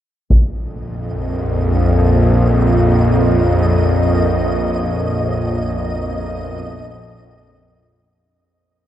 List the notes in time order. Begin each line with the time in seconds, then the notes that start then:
0.29 A#1 F2 A#3 D#5, taiko
0.48 F4
1.16 A#4
1.82 C#5
4.27 A#3
4.87 F#4
5.02 B3
6.05 D#5